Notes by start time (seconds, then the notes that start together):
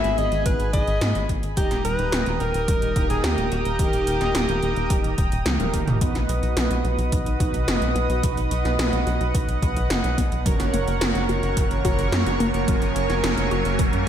Already playing: G#2 D#3 B3 F#4 G#4 E5 G#5 B5
0.04 G#1, closed hi-hat
0.18 G#1 D#5, closed hi-hat
0.32 G#1, closed hi-hat
0.46 G#1 B4, kick, closed hi-hat
0.60 G#1, closed hi-hat
0.73 G#1 G#2 B3 D#4 F#4 G#4 D#5, kick, closed hi-hat
0.87 G#1, closed hi-hat
1.01 G#2, snare, closed hi-hat
1.15 G#1, closed hi-hat
1.29 G#1, kick, closed hi-hat
1.43 G#1, closed hi-hat
1.57 D#1 D#3 G3 D#4 G4 G5 A#5 D#6, kick, closed hi-hat
1.71 D#1, snare, closed hi-hat
1.85 D#1 B4, closed hi-hat
1.99 D#1, closed hi-hat
2.12 D#1, snare, closed hi-hat
2.26 D#1, closed hi-hat
2.40 D#1 A#4, closed hi-hat
2.54 D#1, closed hi-hat
2.68 D#1, kick, closed hi-hat
2.82 D#1, closed hi-hat
2.96 D#1 D#3 A#3 D#4 G4 A#4, kick, closed hi-hat
3.10 D#1 G#4, closed hi-hat
3.24 D#2 G4, snare, closed hi-hat
3.38 D#1, closed hi-hat
3.52 D#1 G4, closed hi-hat
3.65 D#1, closed hi-hat
3.79 D#1 D#3 A#3 D#4 G4 A#4, kick, closed hi-hat
3.93 D#1, closed hi-hat
4.07 D#1, closed hi-hat
4.21 D#1, snare, closed hi-hat
4.35 D#1, snare, closed hi-hat
4.49 D#1, closed hi-hat
4.62 D#1, closed hi-hat
4.76 D#1, closed hi-hat
4.90 D#1, kick, closed hi-hat
5.04 D#1, closed hi-hat
5.18 D#1, kick, closed hi-hat
5.32 D#1, closed hi-hat
5.46 C#2, snare, closed hi-hat, high tom
5.60 D#1 D#3 A#3 D#4 G4 A#4, closed hi-hat, high tom
5.74 D#1, kick, closed hi-hat
5.87 D#1, closed hi-hat, mid tom
6.01 B1 B2 F#3 B3 D#4 F#4 B4 D#5 F#5 D#6, kick, closed hi-hat, riser
6.15 B1, snare, closed hi-hat
6.29 B1 B3, closed hi-hat
6.43 B1, closed hi-hat
6.57 B1, snare, closed hi-hat
6.71 B1, closed hi-hat
6.84 B1 F#4, closed hi-hat
6.98 B1, closed hi-hat
7.12 B1, kick, closed hi-hat
7.26 B1, closed hi-hat
7.40 B1 B2 B3 D#4 F#4 B4, kick, closed hi-hat
7.54 B1, closed hi-hat
7.68 F#1 D#4, snare, closed hi-hat
7.82 B1, closed hi-hat
7.95 B1 B3, closed hi-hat
8.09 B1, closed hi-hat
8.23 B1 B2 F#3 B3 D#4 F#4 B4, kick, closed hi-hat
8.37 B1, closed hi-hat
8.51 B1 B3, closed hi-hat
8.65 B1, snare, closed hi-hat
8.79 B1 D#4, snare, closed hi-hat
8.93 B1, closed hi-hat
9.07 B1 F#4, closed hi-hat
9.21 B1, closed hi-hat
9.35 B1 B4, kick, closed hi-hat
9.48 B1, closed hi-hat
9.62 B1 B2 B3 D#4 F#4 B4, kick, closed hi-hat
9.76 B1, closed hi-hat
9.90 F#1 D#4, snare, closed hi-hat
10.04 B1, closed hi-hat
10.18 B1 B3, kick, closed hi-hat
10.32 B1, closed hi-hat
10.46 F#1 F#3 A#3 C#4 F#4 A#4 C#5 C#6, kick, closed hi-hat
10.59 F#1, snare, closed hi-hat
10.73 F#1 A#3, closed hi-hat
10.87 F#1, closed hi-hat
11.01 F#1 C#4, snare, closed hi-hat
11.15 F#1, closed hi-hat
11.29 F#1 F#4, closed hi-hat
11.43 F#1, closed hi-hat
11.57 F#1 A#4, kick, closed hi-hat
11.71 F#1, closed hi-hat
11.85 F#1 A#3 C#4 F#4 A#4, kick, closed hi-hat
11.98 F#1, closed hi-hat
12.12 F#2 C#4, snare, closed hi-hat
12.26 F#1, closed hi-hat
12.40 F#1 A#3, closed hi-hat
12.54 F#1, closed hi-hat
12.68 F#1 F#3 A#3 C#4 F#4 A#4 G#5, kick, closed hi-hat
12.82 F#1, closed hi-hat
12.96 F#1 A#3, closed hi-hat
13.09 F#1, snare, closed hi-hat
13.23 F#1 C#4, snare, closed hi-hat
13.38 F#1, closed hi-hat
13.51 F#1 F#4, closed hi-hat
13.65 F#1, closed hi-hat
13.79 F#1 A#4, kick, closed hi-hat
13.93 F#2, closed hi-hat